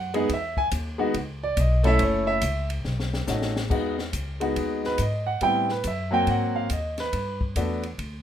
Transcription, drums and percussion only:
0.14 ride soft
0.29 kick soft
0.29 ride medium
0.57 kick medium
0.71 kick soft
0.71 hi-hat pedal medium
0.71 ride medium
1.14 kick soft
1.14 ride medium
1.57 kick soft
1.57 hi-hat pedal medium
1.57 ride medium
1.84 ride soft
1.99 kick soft
1.99 ride medium
2.42 kick soft
2.42 hi-hat pedal medium
2.42 ride medium
2.70 ride medium
2.85 snare soft
3.00 snare medium
3.14 snare medium
3.27 snare medium
3.27 hi-hat pedal medium
3.42 snare medium
3.56 snare medium
3.70 kick medium
3.70 crash medium
3.99 snare medium
4.13 kick soft
4.13 hi-hat pedal medium
4.13 ride medium
4.41 ride soft
4.56 kick soft
4.56 ride medium
4.84 snare soft
4.98 kick soft
4.98 hi-hat pedal soft
4.98 ride medium
5.41 kick soft
5.41 ride medium
5.69 snare soft
5.84 kick soft
5.84 hi-hat pedal medium
5.84 ride medium
6.27 kick soft
6.27 ride soft
6.70 kick soft
6.70 hi-hat pedal medium
6.70 ride medium
6.98 snare soft
6.98 ride soft
7.13 kick soft
7.13 ride medium
7.41 kick medium
7.56 kick soft
7.56 hi-hat pedal medium
7.56 ride medium
7.83 ride soft
7.99 kick soft
7.99 ride medium

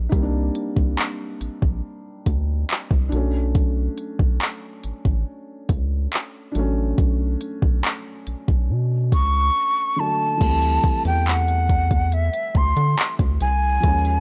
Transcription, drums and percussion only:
0.12 kick loud
0.12 closed hi-hat medium
0.55 closed hi-hat medium
0.76 kick medium
0.98 clap loud
0.98 closed hi-hat medium
1.41 closed hi-hat medium
1.62 kick medium
2.26 kick medium
2.26 closed hi-hat medium
2.69 clap loud
2.69 closed hi-hat medium
2.91 kick medium
3.12 closed hi-hat medium
3.55 kick loud
3.55 closed hi-hat medium
3.98 closed hi-hat medium
4.19 kick loud
4.41 clap loud
4.41 closed hi-hat medium
4.84 closed hi-hat medium
5.05 kick medium
5.69 kick medium
5.69 closed hi-hat medium
6.12 clap loud
6.12 closed hi-hat medium
6.55 closed hi-hat medium
6.98 kick loud
6.98 closed hi-hat medium
7.41 closed hi-hat medium
7.62 kick medium
7.84 clap loud
7.84 closed hi-hat medium
8.27 closed hi-hat medium
8.48 kick medium
9.12 kick medium
9.12 closed hi-hat medium
10.41 kick loud
10.41 closed hi-hat medium
10.41 crash medium
10.62 closed hi-hat medium
10.84 kick loud
10.84 closed hi-hat medium
11.05 closed hi-hat soft
11.27 clap loud
11.27 closed hi-hat medium
11.48 closed hi-hat medium
11.69 kick medium
11.69 closed hi-hat medium
11.91 kick medium
11.91 closed hi-hat medium
12.12 closed hi-hat medium
12.34 closed hi-hat medium
12.55 kick medium
12.77 closed hi-hat medium
12.98 clap loud
12.98 closed hi-hat medium
13.19 kick medium
13.19 closed hi-hat soft
13.41 closed hi-hat medium
13.83 kick loud
13.83 closed hi-hat medium
14.05 closed hi-hat medium

